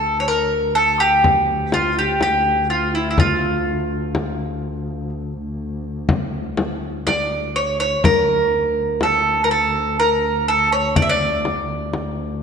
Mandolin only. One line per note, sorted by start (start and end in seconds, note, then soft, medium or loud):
0.00 0.20 A4 medium
0.20 0.27 C#5 medium
0.28 0.75 A#4 medium
0.75 0.98 A4 medium
1.00 1.73 G4 medium
1.74 1.98 F4 medium
1.99 2.21 G4 medium
2.23 2.70 G4 medium
2.70 2.94 F4 medium
2.95 3.09 E4 medium
3.11 3.18 E4 soft
3.20 5.09 F4 medium
7.07 7.55 D5 medium
7.56 7.79 C#5 medium
7.80 8.04 C#5 medium
8.05 9.02 A#4 medium
9.03 9.44 A4 medium
9.44 9.51 A#4 medium
9.51 9.99 A4 medium
10.00 10.48 A#4 medium
10.48 10.72 A4 medium
10.72 10.96 C#5 medium
10.96 11.03 D5 medium
11.02 11.10 E5 medium
11.09 12.43 D5 medium